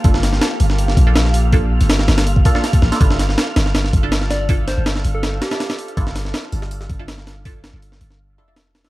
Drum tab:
HH |o-o-o-o-o-o-o-o-|o--oo-ooo-o-oo-o|o-o-o-o-o-o-o-o-|o-o-o-o-o-ooooox|
SD |-oooo--o-o--oo--|----oooo---oo-oo|-oooo-oooo--ooo-|--o-oo--o-oooo--|
BD |o---------o-----|o--------oo--o--|o---------o-----|o---------------|

HH |o-o-o-o-o-o-o-o-|o-o-o-o-----o-oo|
SD |-oooo--o-o--ooo-|--o--o-o----o-oo|
BD |o---------o-----|o---------------|